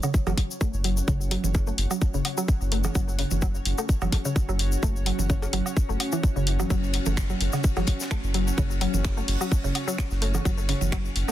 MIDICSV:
0, 0, Header, 1, 6, 480
1, 0, Start_track
1, 0, Tempo, 468750
1, 1105, Time_signature, 4, 2, 24, 8
1, 11589, End_track
2, 0, Start_track
2, 0, Title_t, "Synth texture"
2, 0, Program_c, 0, 99
2, 0, Note_on_c, 0, 73, 79
2, 11589, Note_off_c, 0, 73, 0
2, 11589, End_track
3, 0, Start_track
3, 0, Title_t, "Ambient pad"
3, 0, Program_c, 1, 92
3, 0, Note_on_c, 1, 61, 83
3, 0, Note_on_c, 1, 66, 65
3, 0, Note_on_c, 1, 78, 89
3, 11589, Note_off_c, 1, 61, 0
3, 11589, Note_off_c, 1, 66, 0
3, 11589, Note_off_c, 1, 78, 0
3, 11589, End_track
4, 0, Start_track
4, 0, Title_t, "Synth arpeggio sound"
4, 0, Program_c, 2, 84
4, 35, Note_on_c, 2, 49, 69
4, 67, Note_off_c, 2, 49, 0
4, 275, Note_on_c, 2, 54, 99
4, 307, Note_off_c, 2, 54, 0
4, 625, Note_on_c, 2, 57, 81
4, 648, Note_off_c, 2, 57, 0
4, 863, Note_on_c, 2, 54, 71
4, 922, Note_off_c, 2, 54, 0
4, 1103, Note_on_c, 2, 49, 82
4, 1143, Note_off_c, 2, 49, 0
4, 1344, Note_on_c, 2, 54, 97
4, 1383, Note_off_c, 2, 54, 0
4, 1712, Note_on_c, 2, 57, 72
4, 1733, Note_off_c, 2, 57, 0
4, 1953, Note_on_c, 2, 54, 71
4, 2003, Note_off_c, 2, 54, 0
4, 2192, Note_on_c, 2, 49, 78
4, 2226, Note_off_c, 2, 49, 0
4, 2433, Note_on_c, 2, 54, 106
4, 2466, Note_off_c, 2, 54, 0
4, 2785, Note_on_c, 2, 57, 73
4, 2808, Note_off_c, 2, 57, 0
4, 3024, Note_on_c, 2, 54, 78
4, 3082, Note_off_c, 2, 54, 0
4, 3265, Note_on_c, 2, 49, 78
4, 3303, Note_off_c, 2, 49, 0
4, 3505, Note_on_c, 2, 54, 101
4, 3543, Note_off_c, 2, 54, 0
4, 3874, Note_on_c, 2, 57, 75
4, 3894, Note_off_c, 2, 57, 0
4, 4114, Note_on_c, 2, 54, 74
4, 4163, Note_off_c, 2, 54, 0
4, 4354, Note_on_c, 2, 49, 79
4, 4387, Note_off_c, 2, 49, 0
4, 4595, Note_on_c, 2, 54, 100
4, 4627, Note_off_c, 2, 54, 0
4, 4945, Note_on_c, 2, 57, 83
4, 4968, Note_off_c, 2, 57, 0
4, 5185, Note_on_c, 2, 54, 75
4, 5243, Note_off_c, 2, 54, 0
4, 5424, Note_on_c, 2, 49, 83
4, 5463, Note_off_c, 2, 49, 0
4, 5664, Note_on_c, 2, 54, 99
4, 5703, Note_off_c, 2, 54, 0
4, 6033, Note_on_c, 2, 57, 73
4, 6054, Note_off_c, 2, 57, 0
4, 6273, Note_on_c, 2, 52, 99
4, 6307, Note_off_c, 2, 52, 0
4, 6513, Note_on_c, 2, 49, 79
4, 6546, Note_off_c, 2, 49, 0
4, 6753, Note_on_c, 2, 54, 101
4, 6803, Note_off_c, 2, 54, 0
4, 6863, Note_on_c, 2, 54, 102
4, 6903, Note_off_c, 2, 54, 0
4, 7233, Note_on_c, 2, 57, 74
4, 7254, Note_off_c, 2, 57, 0
4, 7474, Note_on_c, 2, 54, 74
4, 7523, Note_off_c, 2, 54, 0
4, 7713, Note_on_c, 2, 49, 74
4, 7746, Note_off_c, 2, 49, 0
4, 7954, Note_on_c, 2, 54, 98
4, 7987, Note_off_c, 2, 54, 0
4, 8304, Note_on_c, 2, 57, 84
4, 8328, Note_off_c, 2, 57, 0
4, 8544, Note_on_c, 2, 54, 72
4, 8602, Note_off_c, 2, 54, 0
4, 8784, Note_on_c, 2, 49, 82
4, 8823, Note_off_c, 2, 49, 0
4, 9024, Note_on_c, 2, 54, 97
4, 9063, Note_off_c, 2, 54, 0
4, 9394, Note_on_c, 2, 57, 75
4, 9414, Note_off_c, 2, 57, 0
4, 9634, Note_on_c, 2, 54, 72
4, 9684, Note_off_c, 2, 54, 0
4, 9873, Note_on_c, 2, 49, 76
4, 9906, Note_off_c, 2, 49, 0
4, 10112, Note_on_c, 2, 54, 102
4, 10146, Note_off_c, 2, 54, 0
4, 10463, Note_on_c, 2, 57, 75
4, 10487, Note_off_c, 2, 57, 0
4, 10703, Note_on_c, 2, 54, 84
4, 10762, Note_off_c, 2, 54, 0
4, 10943, Note_on_c, 2, 49, 76
4, 10983, Note_off_c, 2, 49, 0
4, 11184, Note_on_c, 2, 54, 101
4, 11223, Note_off_c, 2, 54, 0
4, 11553, Note_on_c, 2, 57, 75
4, 11574, Note_off_c, 2, 57, 0
4, 11589, End_track
5, 0, Start_track
5, 0, Title_t, "Sub bass"
5, 0, Program_c, 3, 38
5, 275, Note_on_c, 3, 30, 90
5, 344, Note_off_c, 3, 30, 0
5, 754, Note_on_c, 3, 30, 91
5, 1039, Note_off_c, 3, 30, 0
5, 1104, Note_on_c, 3, 30, 98
5, 1397, Note_off_c, 3, 30, 0
5, 1474, Note_on_c, 3, 30, 80
5, 1759, Note_off_c, 3, 30, 0
5, 1823, Note_on_c, 3, 30, 99
5, 1905, Note_off_c, 3, 30, 0
5, 2194, Note_on_c, 3, 30, 94
5, 2263, Note_off_c, 3, 30, 0
5, 2674, Note_on_c, 3, 30, 91
5, 2959, Note_off_c, 3, 30, 0
5, 3024, Note_on_c, 3, 30, 98
5, 3317, Note_off_c, 3, 30, 0
5, 3394, Note_on_c, 3, 30, 80
5, 3679, Note_off_c, 3, 30, 0
5, 3744, Note_on_c, 3, 30, 98
5, 3826, Note_off_c, 3, 30, 0
5, 4114, Note_on_c, 3, 30, 93
5, 4184, Note_off_c, 3, 30, 0
5, 4593, Note_on_c, 3, 30, 91
5, 4878, Note_off_c, 3, 30, 0
5, 4944, Note_on_c, 3, 30, 97
5, 5237, Note_off_c, 3, 30, 0
5, 5314, Note_on_c, 3, 30, 79
5, 5599, Note_off_c, 3, 30, 0
5, 5664, Note_on_c, 3, 30, 99
5, 5746, Note_off_c, 3, 30, 0
5, 6035, Note_on_c, 3, 30, 93
5, 6104, Note_off_c, 3, 30, 0
5, 6516, Note_on_c, 3, 30, 97
5, 6800, Note_off_c, 3, 30, 0
5, 6865, Note_on_c, 3, 30, 98
5, 7157, Note_off_c, 3, 30, 0
5, 7236, Note_on_c, 3, 30, 75
5, 7520, Note_off_c, 3, 30, 0
5, 7586, Note_on_c, 3, 30, 99
5, 7667, Note_off_c, 3, 30, 0
5, 7955, Note_on_c, 3, 30, 99
5, 8024, Note_off_c, 3, 30, 0
5, 8434, Note_on_c, 3, 30, 94
5, 8719, Note_off_c, 3, 30, 0
5, 8784, Note_on_c, 3, 30, 97
5, 9077, Note_off_c, 3, 30, 0
5, 9154, Note_on_c, 3, 30, 80
5, 9439, Note_off_c, 3, 30, 0
5, 9505, Note_on_c, 3, 30, 99
5, 9586, Note_off_c, 3, 30, 0
5, 9875, Note_on_c, 3, 30, 92
5, 9944, Note_off_c, 3, 30, 0
5, 10356, Note_on_c, 3, 30, 96
5, 10640, Note_off_c, 3, 30, 0
5, 10705, Note_on_c, 3, 30, 94
5, 10998, Note_off_c, 3, 30, 0
5, 11074, Note_on_c, 3, 30, 80
5, 11359, Note_off_c, 3, 30, 0
5, 11426, Note_on_c, 3, 30, 99
5, 11507, Note_off_c, 3, 30, 0
5, 11589, End_track
6, 0, Start_track
6, 0, Title_t, "Drums"
6, 28, Note_on_c, 9, 82, 68
6, 34, Note_on_c, 9, 77, 50
6, 130, Note_off_c, 9, 82, 0
6, 137, Note_off_c, 9, 77, 0
6, 143, Note_on_c, 9, 82, 56
6, 144, Note_on_c, 9, 36, 109
6, 245, Note_off_c, 9, 82, 0
6, 246, Note_off_c, 9, 36, 0
6, 274, Note_on_c, 9, 56, 66
6, 274, Note_on_c, 9, 64, 81
6, 274, Note_on_c, 9, 77, 69
6, 274, Note_on_c, 9, 82, 38
6, 376, Note_off_c, 9, 56, 0
6, 376, Note_off_c, 9, 64, 0
6, 376, Note_off_c, 9, 77, 0
6, 376, Note_off_c, 9, 82, 0
6, 384, Note_on_c, 9, 36, 56
6, 384, Note_on_c, 9, 46, 86
6, 486, Note_off_c, 9, 36, 0
6, 487, Note_off_c, 9, 46, 0
6, 521, Note_on_c, 9, 82, 69
6, 623, Note_off_c, 9, 82, 0
6, 624, Note_on_c, 9, 36, 107
6, 624, Note_on_c, 9, 82, 65
6, 726, Note_off_c, 9, 36, 0
6, 727, Note_off_c, 9, 82, 0
6, 753, Note_on_c, 9, 82, 38
6, 856, Note_off_c, 9, 82, 0
6, 863, Note_on_c, 9, 46, 88
6, 966, Note_off_c, 9, 46, 0
6, 993, Note_on_c, 9, 82, 72
6, 1095, Note_off_c, 9, 82, 0
6, 1104, Note_on_c, 9, 36, 115
6, 1105, Note_on_c, 9, 82, 62
6, 1206, Note_off_c, 9, 36, 0
6, 1207, Note_off_c, 9, 82, 0
6, 1239, Note_on_c, 9, 82, 39
6, 1342, Note_off_c, 9, 82, 0
6, 1343, Note_on_c, 9, 46, 90
6, 1446, Note_off_c, 9, 46, 0
6, 1472, Note_on_c, 9, 64, 81
6, 1477, Note_on_c, 9, 82, 84
6, 1575, Note_off_c, 9, 64, 0
6, 1579, Note_off_c, 9, 82, 0
6, 1579, Note_on_c, 9, 82, 66
6, 1583, Note_on_c, 9, 56, 67
6, 1584, Note_on_c, 9, 36, 117
6, 1681, Note_off_c, 9, 82, 0
6, 1686, Note_off_c, 9, 36, 0
6, 1686, Note_off_c, 9, 56, 0
6, 1709, Note_on_c, 9, 82, 36
6, 1812, Note_off_c, 9, 82, 0
6, 1823, Note_on_c, 9, 46, 89
6, 1926, Note_off_c, 9, 46, 0
6, 1953, Note_on_c, 9, 77, 55
6, 1953, Note_on_c, 9, 82, 75
6, 2055, Note_off_c, 9, 77, 0
6, 2056, Note_off_c, 9, 82, 0
6, 2062, Note_on_c, 9, 82, 60
6, 2064, Note_on_c, 9, 36, 116
6, 2164, Note_off_c, 9, 82, 0
6, 2166, Note_off_c, 9, 36, 0
6, 2191, Note_on_c, 9, 82, 43
6, 2293, Note_off_c, 9, 82, 0
6, 2303, Note_on_c, 9, 46, 92
6, 2303, Note_on_c, 9, 77, 53
6, 2405, Note_off_c, 9, 46, 0
6, 2406, Note_off_c, 9, 77, 0
6, 2432, Note_on_c, 9, 82, 87
6, 2534, Note_off_c, 9, 82, 0
6, 2543, Note_on_c, 9, 36, 111
6, 2544, Note_on_c, 9, 82, 62
6, 2646, Note_off_c, 9, 36, 0
6, 2646, Note_off_c, 9, 82, 0
6, 2674, Note_on_c, 9, 82, 41
6, 2777, Note_off_c, 9, 82, 0
6, 2782, Note_on_c, 9, 46, 93
6, 2885, Note_off_c, 9, 46, 0
6, 2905, Note_on_c, 9, 82, 78
6, 2914, Note_on_c, 9, 56, 63
6, 2914, Note_on_c, 9, 64, 80
6, 2914, Note_on_c, 9, 77, 57
6, 3008, Note_off_c, 9, 82, 0
6, 3016, Note_off_c, 9, 56, 0
6, 3016, Note_off_c, 9, 64, 0
6, 3016, Note_off_c, 9, 77, 0
6, 3020, Note_on_c, 9, 82, 67
6, 3023, Note_on_c, 9, 36, 118
6, 3122, Note_off_c, 9, 82, 0
6, 3126, Note_off_c, 9, 36, 0
6, 3159, Note_on_c, 9, 82, 42
6, 3262, Note_off_c, 9, 82, 0
6, 3263, Note_on_c, 9, 46, 95
6, 3365, Note_off_c, 9, 46, 0
6, 3386, Note_on_c, 9, 82, 78
6, 3393, Note_on_c, 9, 64, 74
6, 3488, Note_off_c, 9, 82, 0
6, 3496, Note_off_c, 9, 64, 0
6, 3498, Note_on_c, 9, 82, 74
6, 3503, Note_on_c, 9, 36, 115
6, 3601, Note_off_c, 9, 82, 0
6, 3606, Note_off_c, 9, 36, 0
6, 3632, Note_on_c, 9, 82, 40
6, 3734, Note_off_c, 9, 82, 0
6, 3742, Note_on_c, 9, 46, 96
6, 3845, Note_off_c, 9, 46, 0
6, 3871, Note_on_c, 9, 82, 77
6, 3874, Note_on_c, 9, 77, 53
6, 3973, Note_off_c, 9, 82, 0
6, 3977, Note_off_c, 9, 77, 0
6, 3982, Note_on_c, 9, 82, 68
6, 3983, Note_on_c, 9, 36, 122
6, 4085, Note_off_c, 9, 82, 0
6, 4086, Note_off_c, 9, 36, 0
6, 4110, Note_on_c, 9, 82, 41
6, 4114, Note_on_c, 9, 64, 79
6, 4114, Note_on_c, 9, 77, 74
6, 4212, Note_off_c, 9, 82, 0
6, 4217, Note_off_c, 9, 64, 0
6, 4217, Note_off_c, 9, 77, 0
6, 4223, Note_on_c, 9, 36, 59
6, 4223, Note_on_c, 9, 46, 98
6, 4225, Note_on_c, 9, 56, 61
6, 4326, Note_off_c, 9, 36, 0
6, 4326, Note_off_c, 9, 46, 0
6, 4328, Note_off_c, 9, 56, 0
6, 4352, Note_on_c, 9, 82, 81
6, 4454, Note_off_c, 9, 82, 0
6, 4463, Note_on_c, 9, 36, 119
6, 4465, Note_on_c, 9, 82, 61
6, 4566, Note_off_c, 9, 36, 0
6, 4568, Note_off_c, 9, 82, 0
6, 4597, Note_on_c, 9, 82, 38
6, 4699, Note_off_c, 9, 82, 0
6, 4703, Note_on_c, 9, 46, 94
6, 4806, Note_off_c, 9, 46, 0
6, 4832, Note_on_c, 9, 82, 71
6, 4935, Note_off_c, 9, 82, 0
6, 4944, Note_on_c, 9, 36, 120
6, 4944, Note_on_c, 9, 82, 67
6, 5046, Note_off_c, 9, 36, 0
6, 5046, Note_off_c, 9, 82, 0
6, 5080, Note_on_c, 9, 82, 40
6, 5183, Note_off_c, 9, 82, 0
6, 5183, Note_on_c, 9, 46, 89
6, 5285, Note_off_c, 9, 46, 0
6, 5314, Note_on_c, 9, 64, 72
6, 5316, Note_on_c, 9, 82, 72
6, 5416, Note_off_c, 9, 64, 0
6, 5419, Note_off_c, 9, 82, 0
6, 5422, Note_on_c, 9, 82, 65
6, 5424, Note_on_c, 9, 36, 116
6, 5524, Note_off_c, 9, 82, 0
6, 5526, Note_off_c, 9, 36, 0
6, 5554, Note_on_c, 9, 56, 58
6, 5557, Note_on_c, 9, 82, 36
6, 5657, Note_off_c, 9, 56, 0
6, 5660, Note_off_c, 9, 82, 0
6, 5663, Note_on_c, 9, 46, 91
6, 5766, Note_off_c, 9, 46, 0
6, 5794, Note_on_c, 9, 77, 52
6, 5800, Note_on_c, 9, 82, 74
6, 5896, Note_off_c, 9, 77, 0
6, 5902, Note_off_c, 9, 82, 0
6, 5904, Note_on_c, 9, 36, 114
6, 5906, Note_on_c, 9, 82, 65
6, 6007, Note_off_c, 9, 36, 0
6, 6008, Note_off_c, 9, 82, 0
6, 6037, Note_on_c, 9, 82, 38
6, 6139, Note_off_c, 9, 82, 0
6, 6144, Note_on_c, 9, 46, 94
6, 6145, Note_on_c, 9, 77, 51
6, 6247, Note_off_c, 9, 46, 0
6, 6247, Note_off_c, 9, 77, 0
6, 6266, Note_on_c, 9, 82, 74
6, 6369, Note_off_c, 9, 82, 0
6, 6384, Note_on_c, 9, 36, 114
6, 6389, Note_on_c, 9, 82, 63
6, 6486, Note_off_c, 9, 36, 0
6, 6492, Note_off_c, 9, 82, 0
6, 6515, Note_on_c, 9, 82, 38
6, 6618, Note_off_c, 9, 82, 0
6, 6624, Note_on_c, 9, 46, 91
6, 6726, Note_off_c, 9, 46, 0
6, 6753, Note_on_c, 9, 64, 76
6, 6753, Note_on_c, 9, 77, 54
6, 6755, Note_on_c, 9, 82, 74
6, 6856, Note_off_c, 9, 64, 0
6, 6856, Note_off_c, 9, 77, 0
6, 6857, Note_off_c, 9, 82, 0
6, 6863, Note_on_c, 9, 82, 64
6, 6864, Note_on_c, 9, 36, 114
6, 6871, Note_on_c, 9, 51, 78
6, 6965, Note_off_c, 9, 82, 0
6, 6966, Note_off_c, 9, 36, 0
6, 6973, Note_off_c, 9, 51, 0
6, 7001, Note_on_c, 9, 82, 36
6, 7100, Note_on_c, 9, 51, 73
6, 7103, Note_off_c, 9, 82, 0
6, 7104, Note_on_c, 9, 46, 89
6, 7202, Note_off_c, 9, 51, 0
6, 7206, Note_off_c, 9, 46, 0
6, 7226, Note_on_c, 9, 82, 73
6, 7231, Note_on_c, 9, 51, 39
6, 7233, Note_on_c, 9, 64, 75
6, 7328, Note_off_c, 9, 82, 0
6, 7334, Note_off_c, 9, 51, 0
6, 7335, Note_off_c, 9, 64, 0
6, 7343, Note_on_c, 9, 38, 121
6, 7344, Note_on_c, 9, 26, 80
6, 7344, Note_on_c, 9, 36, 116
6, 7344, Note_on_c, 9, 82, 71
6, 7445, Note_off_c, 9, 38, 0
6, 7447, Note_off_c, 9, 26, 0
6, 7447, Note_off_c, 9, 36, 0
6, 7447, Note_off_c, 9, 82, 0
6, 7472, Note_on_c, 9, 82, 37
6, 7575, Note_off_c, 9, 82, 0
6, 7583, Note_on_c, 9, 46, 86
6, 7585, Note_on_c, 9, 51, 64
6, 7686, Note_off_c, 9, 46, 0
6, 7687, Note_off_c, 9, 51, 0
6, 7706, Note_on_c, 9, 82, 79
6, 7713, Note_on_c, 9, 77, 54
6, 7718, Note_on_c, 9, 38, 39
6, 7808, Note_off_c, 9, 82, 0
6, 7816, Note_off_c, 9, 77, 0
6, 7819, Note_on_c, 9, 82, 62
6, 7820, Note_off_c, 9, 38, 0
6, 7822, Note_on_c, 9, 51, 80
6, 7824, Note_on_c, 9, 36, 118
6, 7922, Note_off_c, 9, 82, 0
6, 7925, Note_off_c, 9, 51, 0
6, 7927, Note_off_c, 9, 36, 0
6, 7950, Note_on_c, 9, 82, 38
6, 7953, Note_on_c, 9, 38, 34
6, 7954, Note_on_c, 9, 56, 60
6, 7954, Note_on_c, 9, 64, 74
6, 7954, Note_on_c, 9, 77, 68
6, 8052, Note_off_c, 9, 82, 0
6, 8056, Note_off_c, 9, 38, 0
6, 8056, Note_off_c, 9, 56, 0
6, 8056, Note_off_c, 9, 64, 0
6, 8056, Note_off_c, 9, 77, 0
6, 8056, Note_on_c, 9, 51, 63
6, 8064, Note_on_c, 9, 36, 61
6, 8064, Note_on_c, 9, 46, 92
6, 8159, Note_off_c, 9, 51, 0
6, 8167, Note_off_c, 9, 36, 0
6, 8167, Note_off_c, 9, 46, 0
6, 8192, Note_on_c, 9, 82, 83
6, 8203, Note_on_c, 9, 38, 57
6, 8295, Note_off_c, 9, 82, 0
6, 8304, Note_off_c, 9, 38, 0
6, 8304, Note_on_c, 9, 26, 82
6, 8304, Note_on_c, 9, 36, 117
6, 8304, Note_on_c, 9, 38, 104
6, 8305, Note_on_c, 9, 82, 65
6, 8406, Note_off_c, 9, 26, 0
6, 8406, Note_off_c, 9, 36, 0
6, 8406, Note_off_c, 9, 38, 0
6, 8407, Note_off_c, 9, 82, 0
6, 8432, Note_on_c, 9, 51, 42
6, 8436, Note_on_c, 9, 82, 38
6, 8534, Note_off_c, 9, 51, 0
6, 8538, Note_off_c, 9, 82, 0
6, 8541, Note_on_c, 9, 51, 70
6, 8543, Note_on_c, 9, 46, 86
6, 8644, Note_off_c, 9, 51, 0
6, 8646, Note_off_c, 9, 46, 0
6, 8677, Note_on_c, 9, 51, 40
6, 8677, Note_on_c, 9, 82, 77
6, 8780, Note_off_c, 9, 51, 0
6, 8780, Note_off_c, 9, 82, 0
6, 8784, Note_on_c, 9, 36, 110
6, 8784, Note_on_c, 9, 82, 62
6, 8787, Note_on_c, 9, 51, 81
6, 8886, Note_off_c, 9, 36, 0
6, 8886, Note_off_c, 9, 82, 0
6, 8889, Note_off_c, 9, 51, 0
6, 8915, Note_on_c, 9, 82, 38
6, 9018, Note_off_c, 9, 82, 0
6, 9023, Note_on_c, 9, 46, 89
6, 9024, Note_on_c, 9, 51, 64
6, 9125, Note_off_c, 9, 46, 0
6, 9126, Note_off_c, 9, 51, 0
6, 9153, Note_on_c, 9, 64, 77
6, 9153, Note_on_c, 9, 82, 72
6, 9256, Note_off_c, 9, 64, 0
6, 9256, Note_off_c, 9, 82, 0
6, 9262, Note_on_c, 9, 26, 75
6, 9263, Note_on_c, 9, 51, 80
6, 9263, Note_on_c, 9, 82, 62
6, 9264, Note_on_c, 9, 36, 117
6, 9264, Note_on_c, 9, 56, 64
6, 9271, Note_on_c, 9, 38, 108
6, 9365, Note_off_c, 9, 26, 0
6, 9365, Note_off_c, 9, 51, 0
6, 9366, Note_off_c, 9, 36, 0
6, 9366, Note_off_c, 9, 82, 0
6, 9367, Note_off_c, 9, 56, 0
6, 9373, Note_off_c, 9, 38, 0
6, 9392, Note_on_c, 9, 82, 38
6, 9495, Note_off_c, 9, 82, 0
6, 9504, Note_on_c, 9, 46, 86
6, 9512, Note_off_c, 9, 46, 0
6, 9512, Note_on_c, 9, 46, 71
6, 9614, Note_off_c, 9, 46, 0
6, 9634, Note_on_c, 9, 77, 50
6, 9636, Note_on_c, 9, 82, 77
6, 9736, Note_off_c, 9, 77, 0
6, 9738, Note_off_c, 9, 82, 0
6, 9743, Note_on_c, 9, 51, 85
6, 9744, Note_on_c, 9, 36, 111
6, 9750, Note_on_c, 9, 82, 62
6, 9846, Note_off_c, 9, 51, 0
6, 9847, Note_off_c, 9, 36, 0
6, 9852, Note_off_c, 9, 82, 0
6, 9875, Note_on_c, 9, 82, 39
6, 9977, Note_off_c, 9, 82, 0
6, 9984, Note_on_c, 9, 77, 48
6, 9985, Note_on_c, 9, 46, 84
6, 9986, Note_on_c, 9, 51, 61
6, 10087, Note_off_c, 9, 46, 0
6, 10087, Note_off_c, 9, 77, 0
6, 10088, Note_off_c, 9, 51, 0
6, 10117, Note_on_c, 9, 82, 72
6, 10122, Note_on_c, 9, 51, 39
6, 10220, Note_off_c, 9, 82, 0
6, 10224, Note_off_c, 9, 51, 0
6, 10224, Note_on_c, 9, 26, 86
6, 10224, Note_on_c, 9, 36, 104
6, 10226, Note_on_c, 9, 38, 102
6, 10232, Note_on_c, 9, 82, 66
6, 10326, Note_off_c, 9, 26, 0
6, 10327, Note_off_c, 9, 36, 0
6, 10329, Note_off_c, 9, 38, 0
6, 10334, Note_off_c, 9, 82, 0
6, 10350, Note_on_c, 9, 82, 38
6, 10357, Note_on_c, 9, 38, 43
6, 10452, Note_off_c, 9, 82, 0
6, 10459, Note_off_c, 9, 38, 0
6, 10462, Note_on_c, 9, 51, 68
6, 10464, Note_on_c, 9, 46, 86
6, 10564, Note_off_c, 9, 51, 0
6, 10566, Note_off_c, 9, 46, 0
6, 10589, Note_on_c, 9, 82, 68
6, 10594, Note_on_c, 9, 56, 64
6, 10594, Note_on_c, 9, 64, 75
6, 10594, Note_on_c, 9, 77, 55
6, 10692, Note_off_c, 9, 82, 0
6, 10696, Note_off_c, 9, 56, 0
6, 10696, Note_off_c, 9, 64, 0
6, 10696, Note_off_c, 9, 77, 0
6, 10704, Note_on_c, 9, 36, 111
6, 10707, Note_on_c, 9, 51, 81
6, 10708, Note_on_c, 9, 82, 62
6, 10807, Note_off_c, 9, 36, 0
6, 10810, Note_off_c, 9, 51, 0
6, 10811, Note_off_c, 9, 82, 0
6, 10832, Note_on_c, 9, 82, 34
6, 10934, Note_off_c, 9, 82, 0
6, 10945, Note_on_c, 9, 46, 83
6, 10946, Note_on_c, 9, 51, 67
6, 11047, Note_off_c, 9, 46, 0
6, 11049, Note_off_c, 9, 51, 0
6, 11068, Note_on_c, 9, 51, 41
6, 11074, Note_on_c, 9, 64, 79
6, 11076, Note_on_c, 9, 82, 68
6, 11171, Note_off_c, 9, 51, 0
6, 11176, Note_off_c, 9, 64, 0
6, 11178, Note_off_c, 9, 82, 0
6, 11184, Note_on_c, 9, 36, 111
6, 11185, Note_on_c, 9, 26, 86
6, 11186, Note_on_c, 9, 82, 64
6, 11189, Note_on_c, 9, 38, 105
6, 11287, Note_off_c, 9, 36, 0
6, 11288, Note_off_c, 9, 26, 0
6, 11289, Note_off_c, 9, 82, 0
6, 11292, Note_off_c, 9, 38, 0
6, 11317, Note_on_c, 9, 82, 38
6, 11419, Note_off_c, 9, 82, 0
6, 11425, Note_on_c, 9, 46, 82
6, 11426, Note_on_c, 9, 51, 66
6, 11527, Note_off_c, 9, 46, 0
6, 11529, Note_off_c, 9, 51, 0
6, 11554, Note_on_c, 9, 77, 49
6, 11555, Note_on_c, 9, 38, 39
6, 11555, Note_on_c, 9, 82, 72
6, 11589, Note_off_c, 9, 38, 0
6, 11589, Note_off_c, 9, 77, 0
6, 11589, Note_off_c, 9, 82, 0
6, 11589, End_track
0, 0, End_of_file